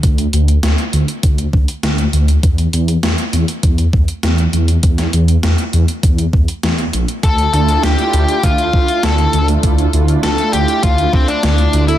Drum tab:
HH |xxxxxxxxxx-xxxxx|xxxxxxxxxx-xxxxx|xxxxxxxxxx-xxxxx|xxxxxxxxxx-xxxxx|
SD |----o-------o---|----o-------o---|-o--o-------o---|----o-------o---|
BD |o-------o-o-----|o-------o-o-----|o-------o-o-----|o-------o-o-----|

HH |xxxxxxxxxx-xxxxx|
SD |----o-------o---|
BD |o-------o-o-----|